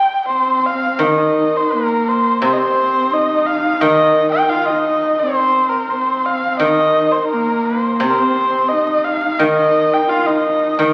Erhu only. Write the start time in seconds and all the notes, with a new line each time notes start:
Already playing: G5
0.28 C5
0.66 F5
0.96 F5
1.03 D#5
1.56 C5
1.72 A#4
2.08 C5
2.43 C5
2.53 D#5
2.58 C5
3.13 D#5
3.46 F5
3.80 D#5
4.32 G5
4.49 F5
4.66 D#5
5.19 C5
5.70 A#4
5.90 C5
6.25 F5
6.60 D#5
7.12 C5
7.28 A#4
7.65 C5
7.98 C5
8.10 A#4 C5
8.68 D#5
9.04 F5
9.39 D#5
9.93 G5
10.09 F5
10.26 D#5
10.80 D#5